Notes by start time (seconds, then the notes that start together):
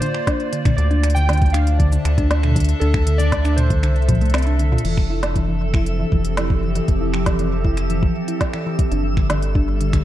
Already playing: A#3 F4 C5 D5
0.00 D3 C5, closed hi-hat
0.15 finger snap
0.27 D4, kick, snare, closed hi-hat
0.40 closed hi-hat
0.53 D3, closed hi-hat
0.65 D3, finger snap, kick, closed hi-hat, mid tom
0.77 D2 D4 D5, closed hi-hat
0.91 D4, closed hi-hat
1.03 finger snap, closed hi-hat
1.08 A5, closed hi-hat
1.15 D3 G5, cabasa
1.26 D3 E5, snare, closed hi-hat
1.32 A4, closed hi-hat
1.37 closed hi-hat
1.42 kick, closed hi-hat
1.46 closed hi-hat
1.50 F5, closed hi-hat
1.54 D4, finger snap, closed hi-hat
1.67 closed hi-hat
1.78 D3 D5, kick, closed hi-hat
1.92 D3, closed hi-hat, cabasa
2.05 D2, finger snap, closed hi-hat
2.18 D4, kick, closed hi-hat
2.31 snare, closed hi-hat
2.43 D3, finger snap, closed hi-hat, mid tom
2.48 mid tom
2.52 mid tom
2.56 D3, kick, closed hi-hat
2.60 closed hi-hat
2.64 closed hi-hat
2.69 closed hi-hat
2.80 D2 D4 A4, closed hi-hat
2.94 finger snap, kick
3.07 D3, closed hi-hat
3.18 D3 D5, closed hi-hat, cabasa
3.32 kick, snare, closed hi-hat
3.45 D4, finger snap, closed hi-hat, cabasa
3.56 C5, closed hi-hat, mid tom
3.70 D3, kick, closed hi-hat
3.83 C2 D3, finger snap, closed hi-hat
3.96 closed hi-hat
4.02 closed hi-hat
4.09 F3, kick, closed hi-hat, mid tom
4.15 closed hi-hat
4.21 A3, closed hi-hat
4.25 closed hi-hat
4.30 closed hi-hat
4.34 C4, finger snap, snare, closed hi-hat
4.38 closed hi-hat
4.42 closed hi-hat
4.47 D4, closed hi-hat
4.59 D3, closed hi-hat
4.72 F4, mid tom
4.78 closed hi-hat
4.85 F1 E3 F3 E5, closed hi-hat, crash
4.97 finger snap, kick
5.10 E4
5.16 C4
5.23 snare, closed hi-hat
5.36 E3, kick, closed hi-hat
5.48 E3
5.74 E4, finger snap, kick
5.85 G4, closed hi-hat
5.99 E3
6.12 F1 E3, kick
6.25 closed hi-hat
6.37 E4, finger snap, snare, closed hi-hat
6.50 kick
6.63 E3
6.75 E3, closed hi-hat
6.88 F1, kick, closed hi-hat
7.01 E4
7.14 finger snap
7.26 E3, kick, snare, closed hi-hat
7.39 E3, closed hi-hat
7.64 E4, kick
7.77 finger snap, closed hi-hat
7.90 E3, closed hi-hat
8.03 E3, kick
8.28 E4, closed hi-hat
8.41 kick, snare, closed hi-hat
8.53 E3, finger snap
8.66 E3
8.79 kick, closed hi-hat
8.92 G1 G3 D4, closed hi-hat
9.17 D3, finger snap, kick
9.30 D3, snare, closed hi-hat
9.42 closed hi-hat
9.47 D4
9.55 D4, kick
9.79 D3 B4, closed hi-hat
9.93 D3, finger snap, kick, closed hi-hat